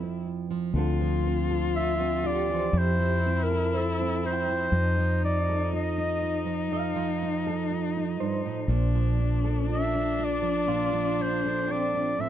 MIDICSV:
0, 0, Header, 1, 6, 480
1, 0, Start_track
1, 0, Key_signature, -1, "major"
1, 0, Tempo, 993377
1, 360, Time_signature, 4, 2, 24, 8
1, 5939, End_track
2, 0, Start_track
2, 0, Title_t, "Clarinet"
2, 0, Program_c, 0, 71
2, 0, Note_on_c, 0, 69, 79
2, 116, Note_off_c, 0, 69, 0
2, 852, Note_on_c, 0, 76, 87
2, 1094, Note_on_c, 0, 74, 85
2, 1102, Note_off_c, 0, 76, 0
2, 1345, Note_on_c, 0, 72, 98
2, 1353, Note_off_c, 0, 74, 0
2, 1660, Note_on_c, 0, 70, 88
2, 1667, Note_off_c, 0, 72, 0
2, 1822, Note_on_c, 0, 69, 84
2, 1830, Note_off_c, 0, 70, 0
2, 2052, Note_off_c, 0, 69, 0
2, 2060, Note_on_c, 0, 72, 98
2, 2511, Note_off_c, 0, 72, 0
2, 2536, Note_on_c, 0, 74, 84
2, 2752, Note_off_c, 0, 74, 0
2, 2777, Note_on_c, 0, 75, 83
2, 3230, Note_off_c, 0, 75, 0
2, 4699, Note_on_c, 0, 76, 83
2, 4949, Note_on_c, 0, 74, 83
2, 4956, Note_off_c, 0, 76, 0
2, 5422, Note_on_c, 0, 72, 86
2, 5429, Note_off_c, 0, 74, 0
2, 5660, Note_on_c, 0, 74, 86
2, 5667, Note_off_c, 0, 72, 0
2, 5898, Note_on_c, 0, 76, 99
2, 5905, Note_off_c, 0, 74, 0
2, 5939, Note_off_c, 0, 76, 0
2, 5939, End_track
3, 0, Start_track
3, 0, Title_t, "Clean electric guitar"
3, 0, Program_c, 1, 27
3, 0, Note_on_c, 1, 74, 55
3, 441, Note_off_c, 1, 74, 0
3, 1082, Note_on_c, 1, 67, 52
3, 1230, Note_on_c, 1, 72, 48
3, 1543, Note_off_c, 1, 67, 0
3, 1677, Note_off_c, 1, 72, 0
3, 1806, Note_on_c, 1, 72, 58
3, 2093, Note_on_c, 1, 79, 44
3, 2504, Note_off_c, 1, 72, 0
3, 2768, Note_off_c, 1, 79, 0
3, 3251, Note_on_c, 1, 77, 45
3, 3964, Note_on_c, 1, 72, 46
3, 4421, Note_off_c, 1, 72, 0
3, 4424, Note_off_c, 1, 77, 0
3, 5162, Note_on_c, 1, 65, 51
3, 5643, Note_on_c, 1, 60, 51
3, 5939, Note_off_c, 1, 60, 0
3, 5939, Note_off_c, 1, 65, 0
3, 5939, End_track
4, 0, Start_track
4, 0, Title_t, "Cello"
4, 0, Program_c, 2, 42
4, 0, Note_on_c, 2, 64, 89
4, 117, Note_off_c, 2, 64, 0
4, 364, Note_on_c, 2, 65, 102
4, 1324, Note_on_c, 2, 64, 94
4, 1331, Note_off_c, 2, 65, 0
4, 2282, Note_on_c, 2, 63, 90
4, 2289, Note_off_c, 2, 64, 0
4, 4201, Note_on_c, 2, 62, 91
4, 4208, Note_off_c, 2, 63, 0
4, 5939, Note_off_c, 2, 62, 0
4, 5939, End_track
5, 0, Start_track
5, 0, Title_t, "Nylon-string guitar"
5, 0, Program_c, 3, 24
5, 0, Note_on_c, 3, 41, 62
5, 0, Note_on_c, 3, 53, 52
5, 0, Note_on_c, 3, 64, 56
5, 0, Note_on_c, 3, 69, 63
5, 12, Note_on_c, 3, 60, 48
5, 119, Note_off_c, 3, 64, 0
5, 125, Note_on_c, 3, 64, 45
5, 242, Note_off_c, 3, 53, 0
5, 244, Note_on_c, 3, 53, 56
5, 334, Note_off_c, 3, 64, 0
5, 360, Note_off_c, 3, 41, 0
5, 364, Note_on_c, 3, 50, 67
5, 367, Note_off_c, 3, 53, 0
5, 369, Note_on_c, 3, 53, 55
5, 370, Note_off_c, 3, 60, 0
5, 371, Note_on_c, 3, 60, 55
5, 376, Note_off_c, 3, 69, 0
5, 378, Note_on_c, 3, 69, 66
5, 486, Note_off_c, 3, 53, 0
5, 487, Note_on_c, 3, 53, 60
5, 610, Note_off_c, 3, 60, 0
5, 612, Note_on_c, 3, 60, 54
5, 723, Note_off_c, 3, 69, 0
5, 725, Note_on_c, 3, 69, 57
5, 963, Note_off_c, 3, 60, 0
5, 965, Note_on_c, 3, 60, 54
5, 1079, Note_off_c, 3, 50, 0
5, 1085, Note_on_c, 3, 50, 64
5, 1203, Note_off_c, 3, 50, 0
5, 1205, Note_on_c, 3, 52, 61
5, 1323, Note_on_c, 3, 41, 65
5, 1324, Note_off_c, 3, 52, 0
5, 1443, Note_off_c, 3, 53, 0
5, 1445, Note_on_c, 3, 53, 60
5, 1572, Note_off_c, 3, 60, 0
5, 1574, Note_on_c, 3, 60, 54
5, 1694, Note_off_c, 3, 69, 0
5, 1696, Note_on_c, 3, 69, 58
5, 1816, Note_on_c, 3, 64, 56
5, 1928, Note_off_c, 3, 60, 0
5, 1939, Note_on_c, 3, 60, 54
5, 2049, Note_off_c, 3, 64, 0
5, 2054, Note_on_c, 3, 64, 46
5, 2171, Note_off_c, 3, 53, 0
5, 2173, Note_on_c, 3, 53, 61
5, 2259, Note_off_c, 3, 64, 0
5, 2261, Note_off_c, 3, 60, 0
5, 2282, Note_off_c, 3, 41, 0
5, 2293, Note_on_c, 3, 41, 62
5, 2408, Note_off_c, 3, 53, 0
5, 2410, Note_on_c, 3, 53, 57
5, 2531, Note_on_c, 3, 63, 48
5, 2546, Note_off_c, 3, 69, 0
5, 2653, Note_on_c, 3, 69, 61
5, 2768, Note_on_c, 3, 65, 53
5, 2882, Note_off_c, 3, 63, 0
5, 2888, Note_on_c, 3, 63, 51
5, 3003, Note_off_c, 3, 65, 0
5, 3005, Note_on_c, 3, 65, 54
5, 3120, Note_off_c, 3, 53, 0
5, 3122, Note_on_c, 3, 53, 59
5, 3235, Note_off_c, 3, 41, 0
5, 3240, Note_on_c, 3, 41, 69
5, 3360, Note_off_c, 3, 53, 0
5, 3362, Note_on_c, 3, 53, 64
5, 3484, Note_off_c, 3, 63, 0
5, 3491, Note_on_c, 3, 63, 55
5, 3606, Note_off_c, 3, 69, 0
5, 3608, Note_on_c, 3, 69, 63
5, 3723, Note_off_c, 3, 65, 0
5, 3725, Note_on_c, 3, 65, 57
5, 3843, Note_off_c, 3, 63, 0
5, 3849, Note_on_c, 3, 63, 60
5, 3959, Note_off_c, 3, 41, 0
5, 3962, Note_on_c, 3, 43, 57
5, 4080, Note_off_c, 3, 43, 0
5, 4085, Note_on_c, 3, 45, 60
5, 4175, Note_off_c, 3, 63, 0
5, 4198, Note_off_c, 3, 45, 0
5, 4199, Note_on_c, 3, 46, 70
5, 4214, Note_off_c, 3, 69, 0
5, 4322, Note_off_c, 3, 53, 0
5, 4323, Note_on_c, 3, 53, 60
5, 4443, Note_on_c, 3, 62, 49
5, 4562, Note_on_c, 3, 69, 63
5, 4680, Note_off_c, 3, 65, 0
5, 4682, Note_on_c, 3, 65, 53
5, 4800, Note_off_c, 3, 62, 0
5, 4806, Note_on_c, 3, 62, 53
5, 4922, Note_off_c, 3, 65, 0
5, 4924, Note_on_c, 3, 65, 53
5, 5033, Note_off_c, 3, 53, 0
5, 5035, Note_on_c, 3, 53, 58
5, 5153, Note_off_c, 3, 46, 0
5, 5158, Note_on_c, 3, 46, 66
5, 5276, Note_off_c, 3, 53, 0
5, 5278, Note_on_c, 3, 53, 60
5, 5402, Note_off_c, 3, 62, 0
5, 5408, Note_on_c, 3, 62, 53
5, 5524, Note_off_c, 3, 69, 0
5, 5526, Note_on_c, 3, 69, 62
5, 5644, Note_off_c, 3, 65, 0
5, 5646, Note_on_c, 3, 65, 60
5, 5763, Note_off_c, 3, 62, 0
5, 5771, Note_on_c, 3, 62, 57
5, 5878, Note_off_c, 3, 46, 0
5, 5887, Note_on_c, 3, 45, 59
5, 5939, Note_off_c, 3, 45, 0
5, 5939, Note_off_c, 3, 53, 0
5, 5939, Note_off_c, 3, 62, 0
5, 5939, Note_off_c, 3, 65, 0
5, 5939, Note_off_c, 3, 69, 0
5, 5939, End_track
6, 0, Start_track
6, 0, Title_t, "Fretless electric bass"
6, 0, Program_c, 4, 35
6, 0, Note_on_c, 4, 29, 59
6, 338, Note_off_c, 4, 29, 0
6, 356, Note_on_c, 4, 38, 59
6, 1301, Note_off_c, 4, 38, 0
6, 1320, Note_on_c, 4, 41, 78
6, 2261, Note_off_c, 4, 41, 0
6, 2280, Note_on_c, 4, 41, 65
6, 4179, Note_off_c, 4, 41, 0
6, 4194, Note_on_c, 4, 34, 68
6, 5939, Note_off_c, 4, 34, 0
6, 5939, End_track
0, 0, End_of_file